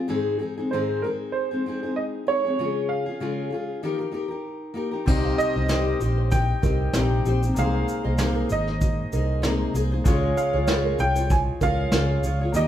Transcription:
0.08 steel-string acoustic guitar G#2 D#3 G#3 C4 D#4 G#4
0.39 steel-string acoustic guitar G#3 C4 D#4 G#4
0.57 steel-string acoustic guitar G#3 C4 D#4 G#4
0.71 steel-string acoustic guitar G#2 D#3 G#3 C4 D#4, upright piano C5
0.75 steel-string acoustic guitar G#4
1.02 steel-string acoustic guitar G#3 C4 D#4, upright piano A#4
1.07 steel-string acoustic guitar G#4
1.32 upright piano C5
1.51 steel-string acoustic guitar G#3 C4 D#4 G#4
1.66 steel-string acoustic guitar G#3 C4 D#4 G#4
1.83 steel-string acoustic guitar G#3 C4 D#4 G#4
1.96 upright piano D#5
2.27 steel-string acoustic guitar G#3 C4 D#4 G#4, upright piano C#5
2.44 steel-string acoustic guitar G#3 C4 D#4 G#4
2.59 steel-string acoustic guitar C#3 G#3 C#4 F4 G#4
2.89 upright piano F5
3.06 steel-string acoustic guitar C#4 F4 G#4
3.20 steel-string acoustic guitar C#3 G#3 C#4 F4 G#4
3.51 steel-string acoustic guitar G#3 C#4 F4 G#4
3.83 steel-string acoustic guitar D#3 A#3 D#4 G4 A#4
3.99 steel-string acoustic guitar D#4 G4 A#4
4.12 steel-string acoustic guitar A#3 D#4 G4 A#4
4.28 steel-string acoustic guitar D#4 G4 A#4
4.74 steel-string acoustic guitar A#3 D#4 G4 A#4
4.91 steel-string acoustic guitar D#4 G4 A#4
5.06 fretless electric bass C2, steel-string acoustic guitar C3 G3 C4 D#4 G4 C5, grand piano C4 G4, kick, crash
5.10 grand piano D#5
5.25 nylon-string guitar F5
5.38 upright piano D#5, shaker
5.56 fretless electric bass C2, steel-string acoustic guitar C4 D#4 G4 C5, nylon-string guitar D#5
5.68 steel-string acoustic guitar C3 G3 C4 D#4 G4 C5, snare, shaker
5.87 nylon-string guitar A#4
6.00 fretless electric bass A#1, steel-string acoustic guitar C4 D#4 G4 C5, shaker
6.18 nylon-string guitar C5
6.31 upright piano G5, kick, shaker
6.62 fretless electric bass C2, steel-string acoustic guitar C4 D#4 G4 C5, grand piano C4 G4 D#5, nylon-string guitar A#4, kick, shaker
6.93 fretless electric bass A#1, steel-string acoustic guitar C3 G3 C4 D#4 G4 C5, snare, shaker
7.25 fretless electric bass A#1, steel-string acoustic guitar C4 D#4 G4 C5, shaker
7.43 steel-string acoustic guitar C4 D#4 G4 C5, shaker
7.54 fretless electric bass C2, steel-string acoustic guitar C3 G#3 A#3 D#4 C5, grand piano A#3 G#4, shaker
7.59 steel-string acoustic guitar G#4, grand piano C5, upright piano F5
7.74 nylon-string guitar F5
7.88 shaker
8.04 fretless electric bass C2, steel-string acoustic guitar A#3 D#4 G#4 C5, nylon-string guitar D#5
8.18 steel-string acoustic guitar C3 G#3 A#3 D#4 G#4 C5, snare, shaker
8.36 nylon-string guitar A#4
8.49 fretless electric bass G#1, steel-string acoustic guitar A#3 D#4 G#4 C5, upright piano D#5, shaker
8.67 nylon-string guitar C5, snare
8.81 kick, shaker
9.12 fretless electric bass C2, steel-string acoustic guitar A#3 D#4 G#4 C5, nylon-string guitar A#4, shaker
9.42 steel-string acoustic guitar C3 G#3 A#3 D#4 G#4 C5, snare, shaker
9.74 fretless electric bass C2, steel-string acoustic guitar A#3 D#4 G#4 C5, shaker
9.92 steel-string acoustic guitar A#3 D#4 G#4 C5
10.04 fretless electric bass C#2, steel-string acoustic guitar C#3 C#4 F4 G#4 C#5, grand piano G#3 F4, kick, shaker
10.08 grand piano C#5
10.23 nylon-string guitar D#5
10.37 upright piano F5, shaker
10.53 fretless electric bass C#2, steel-string acoustic guitar F4 G#4 C#5, nylon-string guitar C#5
10.67 steel-string acoustic guitar C#3 C#4 F4 G#4 C#5, snare, shaker
10.85 nylon-string guitar A#4
10.99 fretless electric bass C2, steel-string acoustic guitar C#4 F4 G#4 C#5, upright piano G5, shaker
11.16 steel-string acoustic guitar F4 G#4 C#5, nylon-string guitar C5, shaker
11.30 upright piano G#5, kick, shaker
11.61 fretless electric bass C#2, steel-string acoustic guitar C#4 F4 G#4 C#5, nylon-string guitar A#4, upright piano F5, kick, shaker
11.92 fretless electric bass C#2, steel-string acoustic guitar C#3 C#4 F4 G#4 C#5, snare, shaker
12.23 fretless electric bass C#2, steel-string acoustic guitar C#4 F4 G#4, shaker
12.27 steel-string acoustic guitar C#5
12.41 steel-string acoustic guitar F4 G#4 C#5
12.52 fretless electric bass D#2, steel-string acoustic guitar D#3 G3 A#3 D#4 D#5, grand piano A#3 G4 D#5, upright piano D#5, shaker
12.56 steel-string acoustic guitar G4

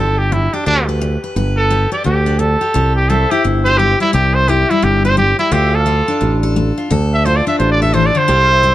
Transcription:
Already playing: fingered electric bass G1, steel-string acoustic guitar G3 G4
0.00 trumpet A4
0.18 trumpet G4
0.32 steel-string acoustic guitar D4, trumpet E4
0.53 trumpet D4, steel-string acoustic guitar G4
0.66 fingered electric bass D2, steel-string acoustic guitar D3, trumpet D4
0.89 steel-string acoustic guitar B4
1.01 steel-string acoustic guitar D4
1.24 steel-string acoustic guitar B4
1.36 fingered electric bass G1, steel-string acoustic guitar G3 B4
1.57 trumpet A4
1.71 steel-string acoustic guitar D4 G4
1.92 steel-string acoustic guitar G4, trumpet D5
2.04 fingered electric bass D2, steel-string acoustic guitar D3, trumpet G4
2.26 steel-string acoustic guitar D4
2.39 steel-string acoustic guitar D4, trumpet A4
2.61 steel-string acoustic guitar G4
2.74 fingered electric bass C2, steel-string acoustic guitar C3 G4
2.96 trumpet G4
3.09 steel-string acoustic guitar G3 G4, pedal steel guitar G4 C5 E5, trumpet A4
3.31 steel-string acoustic guitar E4, trumpet G4
3.44 fingered electric bass G1, steel-string acoustic guitar C3
3.65 steel-string acoustic guitar G4, trumpet C5
3.78 steel-string acoustic guitar G3, trumpet G4
4.00 steel-string acoustic guitar G3, trumpet E4
4.13 fingered electric bass C2, steel-string acoustic guitar C3 E4, trumpet G4
4.35 trumpet C5
4.48 steel-string acoustic guitar G3 E4, trumpet G4
4.70 steel-string acoustic guitar G3, trumpet E4
4.82 fingered electric bass G1, steel-string acoustic guitar C3, trumpet G4
5.05 steel-string acoustic guitar G4, trumpet C5
5.17 steel-string acoustic guitar G3, trumpet G4
5.39 steel-string acoustic guitar G3, trumpet E4
5.52 fingered electric bass D2, steel-string acoustic guitar D3 F4, pedal steel guitar G4 D5 E5, trumpet G4
5.74 trumpet A4, pedal steel guitar A4 F5
5.86 steel-string acoustic guitar A3 F4
6.08 steel-string acoustic guitar D4
6.21 fingered electric bass A1, steel-string acoustic guitar A2
6.43 steel-string acoustic guitar A4
6.56 steel-string acoustic guitar A3
6.78 steel-string acoustic guitar F4
6.91 fingered electric bass D2, steel-string acoustic guitar D3 A4
7.14 trumpet E5
7.25 steel-string acoustic guitar A3 F4, trumpet C5
7.36 trumpet D5
7.47 steel-string acoustic guitar D4, trumpet E5
7.59 fingered electric bass A1, steel-string acoustic guitar A2, trumpet C5
7.72 trumpet D5
7.82 steel-string acoustic guitar A4, trumpet E5
7.94 steel-string acoustic guitar E3, trumpet C5
8.06 trumpet D5
8.15 steel-string acoustic guitar D3, trumpet C5
8.28 fingered electric bass C2, steel-string acoustic guitar C3 G4, pedal steel guitar A4 C5 F5
8.51 pedal steel guitar G4 E5
8.63 steel-string acoustic guitar G3 G4

